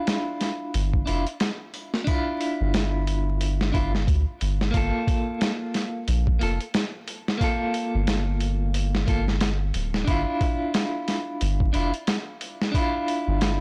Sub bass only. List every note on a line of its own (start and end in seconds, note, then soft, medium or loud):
0.75 1.04 G1 medium
1.08 1.25 F1 medium
2.61 3.72 G1 medium
3.75 4.07 G1 medium
4.08 4.25 D2 medium
4.42 4.71 G1 medium
4.74 4.92 G1 loud
6.08 6.38 A#1 medium
6.42 6.58 F1 medium
7.95 9.05 G1 loud
9.08 9.72 G1 medium
9.74 10.04 D1 medium
10.08 10.25 G1 loud
11.42 11.71 G1 loud
11.75 11.92 F1 medium
13.28 13.61 G1 loud